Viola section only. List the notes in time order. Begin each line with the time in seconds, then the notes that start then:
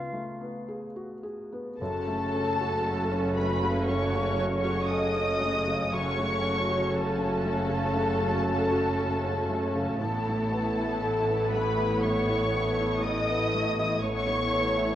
1.79 C#4 F#4
5.93 C#4 F#4
10.00 B3 E4
14.05 B3 E4